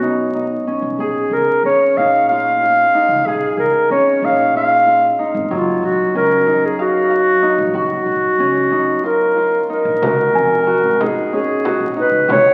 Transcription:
0.00 0.55 B2 medium
0.00 0.37 F#3 medium
0.00 2.47 B3 medium
0.00 0.67 C#4 medium
0.00 0.34 D#4 medium
0.00 0.61 F#4 medium
0.00 1.16 F#4 medium
0.35 1.98 D#4 medium
0.67 1.65 C#4 medium
0.82 0.94 B1 medium
0.98 1.23 A#1 medium
0.98 1.34 G#4 medium
0.98 3.27 G#4 medium
1.31 1.43 C#2 medium
1.31 1.65 A#4 medium
1.64 1.88 F2 medium
1.64 3.91 C#4 medium
1.64 1.99 C#5 medium
1.97 2.82 A#2 medium
1.97 2.94 D#4 medium
1.97 2.28 F5 medium
2.29 2.63 F4 medium
2.29 3.28 F5 medium
2.63 4.55 F4 medium
2.94 4.23 D#4 medium
3.09 3.21 C#2 medium
3.26 3.50 A#1 medium
3.26 3.58 G#4 medium
3.26 5.55 G#4 medium
3.57 3.70 C#2 medium
3.57 3.88 A#4 medium
3.90 4.14 F2 medium
3.90 6.15 C#4 medium
3.90 4.27 C#5 medium
4.22 5.07 A#2 medium
4.22 5.18 D#4 medium
4.22 4.56 F5 medium
4.55 4.86 F4 medium
4.55 5.21 F5 medium
4.87 5.57 F4 medium
5.19 6.46 D#4 medium
5.34 5.47 G#1 medium
5.51 5.75 F#1 medium
5.51 9.41 F#3 medium
5.51 5.86 F4 medium
5.83 5.95 A#1 medium
5.83 6.16 F#4 medium
6.15 6.39 C#2 medium
6.15 8.39 C#4 medium
6.15 6.67 A#4 medium
6.47 7.32 F#2 medium
6.47 7.42 D#4 medium
6.65 6.80 G#4 medium
6.79 7.72 F#4 medium
6.79 7.10 F5 medium
7.11 7.81 F5 medium
7.42 8.72 D#4 medium
7.58 7.71 A#1 medium
7.73 7.98 F#1 medium
7.73 9.10 F#4 medium
7.73 9.01 F#4 medium
8.06 8.19 A#1 medium
8.38 8.63 C#2 medium
8.38 11.29 C#4 medium
8.70 9.58 F#2 medium
8.70 9.69 D#4 medium
9.04 9.37 F4 medium
9.04 9.67 A#4 medium
9.37 10.08 F4 soft
9.70 11.00 D#4 medium
9.70 11.04 A#4 medium
9.85 9.98 A#1 medium
10.02 10.34 C#2 medium
10.02 10.66 F#4 medium
10.02 frame drum medium
10.34 10.71 F2 medium
10.34 11.86 G#5 medium
10.67 11.64 F#4 medium
10.83 11.08 G#1 medium
11.00 11.96 D#4 medium
11.00 11.34 G#4 medium
11.00 frame drum soft
11.33 12.54 C#4 medium
11.33 11.94 G#4 medium
11.33 frame drum soft
11.65 12.28 F#4 medium
11.65 frame drum soft
11.80 12.05 A#1 medium
11.96 12.54 D#4 medium
11.96 12.28 B4 medium
12.11 12.24 C#2 medium
12.28 12.40 C#2 medium
12.28 12.54 F#4 medium
12.28 12.54 C#5 medium
12.28 frame drum medium

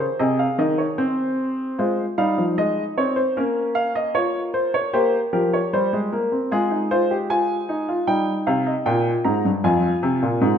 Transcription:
0.00 0.20 C5 medium
0.19 0.44 C3 medium
0.19 1.74 G#4 medium
0.19 0.39 D#5 medium
0.39 0.59 F5 medium
0.58 0.83 D#3 medium
0.58 0.79 D#5 medium
0.78 0.98 C#5 medium
0.98 1.76 C4 medium
0.98 1.76 C5 medium
1.79 2.03 G#3 medium
1.79 2.03 F4 medium
1.79 2.03 C5 medium
2.18 2.37 G3 medium
2.18 3.33 D#4 medium
2.18 2.43 F5 medium
2.38 2.57 F3 medium
2.58 2.82 G#3 medium
2.58 2.82 D#5 medium
2.98 3.22 C4 medium
2.98 3.17 C#5 medium
3.16 3.36 C5 medium
3.37 4.91 A#3 medium
3.37 4.13 C#4 medium
3.37 3.61 A#4 medium
3.75 3.95 F5 medium
3.96 4.15 D#5 medium
4.15 4.92 F4 medium
4.15 4.40 C#5 medium
4.54 4.74 C5 medium
4.74 4.94 C#5 medium
4.93 5.19 A#3 medium
4.93 5.18 G4 medium
4.93 5.18 C5 medium
5.33 5.58 F3 medium
5.33 6.48 G4 medium
5.33 5.53 A#4 medium
5.53 5.73 C#5 medium
5.73 5.92 G3 medium
5.73 5.98 C5 medium
5.93 6.12 G#3 medium
6.12 6.32 A#3 medium
6.12 6.37 A#4 medium
6.32 6.51 C4 medium
6.51 8.05 G#3 medium
6.51 6.71 F4 medium
6.51 6.76 G#4 loud
6.71 6.90 D#4 medium
6.91 7.10 F4 medium
6.91 7.15 C5 loud
7.11 7.30 G4 medium
7.30 7.54 F4 medium
7.30 8.06 G#5 medium
7.69 7.88 D#4 medium
7.89 8.08 F4 medium
8.07 8.32 G3 medium
8.07 9.61 D#4 medium
8.07 8.32 G5 medium
8.47 8.72 C3 loud
8.47 8.66 F5 medium
8.67 8.86 D#5 medium
8.86 9.11 A#2 medium
8.86 9.11 G5 medium
9.24 9.45 G#2 medium
9.24 9.49 A#5 medium
9.45 9.64 G2 medium
9.64 9.89 F2 medium
9.64 10.58 F4 medium
9.64 10.58 G#5 medium
10.03 10.22 C3 loud
10.22 10.42 A#2 medium
10.41 10.58 G#2 medium

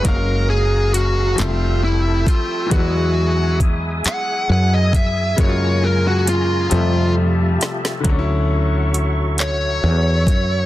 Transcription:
0.00 1.37 F#3 medium
0.00 1.35 G#4 medium
0.04 1.35 F#1 medium
0.04 1.38 G#3 medium
0.04 1.39 A#3 medium
0.04 1.39 C#4 medium
0.04 1.38 F#4 medium
0.04 0.49 A#4 medium
0.04 1.37 F5 medium
0.04 1.37 A#5 medium
0.04 kick loud
0.04 closed hi-hat medium
0.08 1.40 F5 medium
0.50 0.91 G#4 medium
0.94 1.39 F#4 medium
0.94 closed hi-hat medium
1.36 2.24 F1 medium
1.36 2.70 F3 medium
1.36 2.71 G3 medium
1.36 2.72 A3 medium
1.36 1.84 F4 medium
1.36 2.71 A4 medium
1.36 2.70 E5 medium
1.36 2.70 G5 medium
1.36 2.71 E6 medium
1.36 closed hi-hat medium
1.40 2.73 C4 medium
1.40 2.73 E5 medium
1.40 clap loud
1.84 2.28 E4 medium
2.27 2.69 F4 medium
2.27 kick medium
2.27 closed hi-hat medium
2.66 5.32 E3 medium
2.66 5.33 F#3 medium
2.71 4.01 E2 loud
2.71 5.35 G#3 medium
2.71 3.57 F#4 medium
2.71 6.67 G#4 medium
2.71 5.36 E5 medium
2.71 6.68 G#5 medium
2.71 5.36 D#6 medium
2.71 kick loud
2.71 closed hi-hat medium
2.75 5.36 B3 medium
2.75 5.38 E4 medium
3.60 kick medium
3.60 closed hi-hat medium
4.04 4.48 F#5 loud
4.04 muted fretless electric bass stroke soft
4.04 clap loud
4.04 closed hi-hat medium
4.49 5.34 F#2 medium
4.49 4.74 F#5 loud
4.74 4.95 D#5 medium
4.93 5.36 E5 loud
4.93 kick loud
4.93 closed hi-hat medium
5.36 6.68 F#2 loud
5.36 6.71 C#3 medium
5.36 6.71 F#3 medium
5.36 6.72 G#3 medium
5.36 8.02 F4 medium
5.36 6.70 A#5 medium
5.36 kick loud
5.36 closed hi-hat medium
5.40 6.73 A#3 medium
5.40 5.47 E4 medium
5.40 5.85 C#5 medium
5.49 6.77 F4 medium
5.84 6.04 A#4 medium
6.07 6.28 F#4 medium
6.27 7.13 F4 medium
6.27 closed hi-hat medium
6.70 7.57 F2 loud
6.70 8.04 C3 medium
6.70 8.05 F3 medium
6.70 8.06 G3 medium
6.70 8.04 G4 medium
6.70 8.04 E5 medium
6.70 8.04 A5 medium
6.70 closed hi-hat medium
6.74 8.05 A3 medium
6.74 8.07 E5 medium
7.61 snare loud
7.61 closed hi-hat medium
7.85 snare medium
8.00 10.65 D3 medium
8.00 10.66 F#3 medium
8.05 9.79 D2 medium
8.05 10.66 A3 medium
8.05 10.66 F#4 medium
8.05 10.66 C#5 medium
8.05 10.66 E5 medium
8.05 10.66 C#6 medium
8.05 kick loud
8.05 closed hi-hat medium
8.09 10.66 C#4 medium
8.09 8.15 D4 medium
8.19 10.66 E4 medium
8.94 closed hi-hat medium
9.38 10.66 C#5 medium
9.38 clap loud
9.38 closed hi-hat medium
9.84 10.27 E2 medium
10.27 10.66 F#2 medium
10.27 kick medium
10.27 closed hi-hat medium

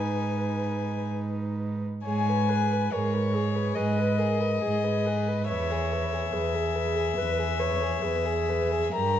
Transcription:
0.00 1.80 G#2 soft
0.00 1.80 D#4 soft
0.00 1.84 B4 soft
0.00 1.07 G#5 medium
2.05 2.83 G#2 medium
2.05 2.31 G#4 soft
2.05 2.51 C#5 soft
2.05 2.94 G#5 medium
2.29 2.50 B4 soft
2.49 2.74 G#4 soft
2.49 2.95 B4 soft
2.73 2.92 B4 soft
2.92 3.68 G#2 medium
2.92 3.15 G#4 soft
2.92 3.37 A#4 soft
2.92 3.77 C#5 medium
3.14 3.36 B4 soft
3.34 3.57 G#4 soft
3.34 3.78 G#4 soft
3.55 3.76 B4 soft
3.75 4.53 G#2 soft
3.75 4.00 G#4 soft
3.75 4.21 B4 soft
3.75 5.48 D#5 medium
3.98 4.20 B4 soft
4.19 4.42 G#4 soft
4.19 4.63 A#4 soft
4.40 4.61 B4 soft
4.62 5.40 G#2 soft
4.62 5.07 G#4 soft
4.62 4.85 G#4 soft
4.84 5.07 B4 soft
5.06 5.29 G#4 soft
5.06 5.48 B4 medium
5.27 5.48 B4 soft
5.48 6.24 E2 medium
5.48 5.72 B4 soft
5.48 6.35 C#5 medium
5.48 8.90 E5 medium
5.71 5.94 G#4 soft
5.93 6.15 B4 soft
6.13 6.34 G#4 soft
6.33 7.08 E2 soft
6.33 7.20 G#4 medium
6.33 6.56 B4 soft
6.55 6.77 G#4 soft
6.75 6.97 B4 soft
6.95 7.17 G#4 soft
7.17 7.92 E2 medium
7.17 7.39 B4 soft
7.17 7.61 B4 soft
7.38 7.61 G#4 soft
7.59 7.83 B4 soft
7.59 8.04 C#5 medium
7.82 8.03 G#4 soft
8.02 8.84 E2 soft
8.02 8.94 G#4 medium
8.02 8.27 B4 soft
8.25 8.51 G#4 soft
8.49 8.73 B4 soft
8.71 8.94 G#4 soft
8.94 9.20 G2 medium
8.94 9.20 G4 soft
8.94 9.20 A#4 medium
8.94 9.20 A#5 medium

